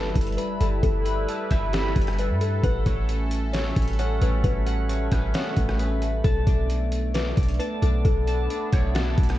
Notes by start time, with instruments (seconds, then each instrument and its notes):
Already playing: 808-style bass G1, analog synth pad G3 E4 A4 B4, synth texture A3 E4 B4, kalimba B4, clean electric guitar A5 B5, impact
0.15 808-style bass G1, kick, closed hi-hat
0.21 closed hi-hat
0.27 closed hi-hat
0.32 closed hi-hat
0.37 kalimba B4, clean electric guitar B5, closed hi-hat
0.61 808-style bass G1, kalimba A4, clean electric guitar A5, closed hi-hat
0.83 808-style bass G1, kalimba A4, analog synth pad A4, kick, closed hi-hat
1.05 clean electric guitar B5, closed hi-hat
1.29 clean electric guitar A5, closed hi-hat
1.51 808-style bass G1, clean electric guitar E5, kick, cross-stick, closed hi-hat
1.73 kalimba G4, clean electric guitar B5, snare, closed hi-hat
1.96 808-style bass G1, kick, closed hi-hat
2.02 closed hi-hat
2.07 cross-stick, closed hi-hat
2.13 closed hi-hat
2.19 kalimba B4, clean electric guitar E5, closed hi-hat
2.30 808-style bass G2
2.41 kalimba A4, closed hi-hat
2.63 808-style bass A1, synth texture G3 C#4 F#4, analog synth pad A3 C#4, kalimba B4, clean electric guitar F#5, kick, closed hi-hat
2.86 808-style bass A1, clean electric guitar C#5, kick, closed hi-hat
3.09 closed hi-hat
3.31 closed hi-hat
3.53 kalimba C#5, clean electric guitar C#5, snare, closed hi-hat
3.76 808-style bass A1, kick, closed hi-hat
3.82 closed hi-hat
3.88 closed hi-hat
3.93 closed hi-hat
3.99 kalimba C#5, clean electric guitar F#5, closed hi-hat
4.21 808-style bass A1, kalimba B4, clean electric guitar C#5, closed hi-hat
4.44 808-style bass A1, kalimba B4, kick, closed hi-hat
4.66 clean electric guitar F#5, closed hi-hat
4.89 clean electric guitar C#5, closed hi-hat
5.12 808-style bass A1, clean electric guitar B4, kick, cross-stick, closed hi-hat
5.34 kalimba C#5, clean electric guitar F#5, snare, closed hi-hat
5.57 808-style bass A1, kick, closed hi-hat
5.69 cross-stick
5.79 clean electric guitar B4, closed hi-hat
6.02 closed hi-hat
6.24 808-style bass B1, synth texture A3 D4 C#5, analog synth pad B3 D4, kalimba A4, clean electric guitar A5, kick, closed hi-hat
6.47 808-style bass B1, clean electric guitar D5, kick, closed hi-hat
6.70 closed hi-hat
6.92 closed hi-hat
7.14 kalimba B4, clean electric guitar D5, snare, closed hi-hat
7.37 808-style bass B1, kick, closed hi-hat
7.43 closed hi-hat
7.48 closed hi-hat
7.54 closed hi-hat
7.59 kalimba B4, clean electric guitar A5, closed hi-hat
7.82 808-style bass B1, kalimba A4, clean electric guitar D5, closed hi-hat
8.05 808-style bass B1, kalimba A4, synth texture B4, kick, closed hi-hat
8.27 clean electric guitar A5, closed hi-hat
8.50 clean electric guitar D5, closed hi-hat
8.72 808-style bass B1, clean electric guitar C#5, kick, cross-stick, closed hi-hat
8.95 kalimba F#4, clean electric guitar A5, snare, closed hi-hat
9.18 808-style bass B1, kick, closed hi-hat
9.23 closed hi-hat
9.29 cross-stick, closed hi-hat
9.35 closed hi-hat